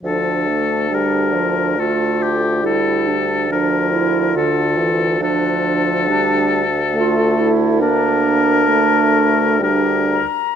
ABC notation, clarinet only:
X:1
M:3/4
L:1/8
Q:1/4=69
K:Dm
V:1 name="Clarinet"
D4 F2 | E D D E F2 | D2 D z F E | D4 D z |]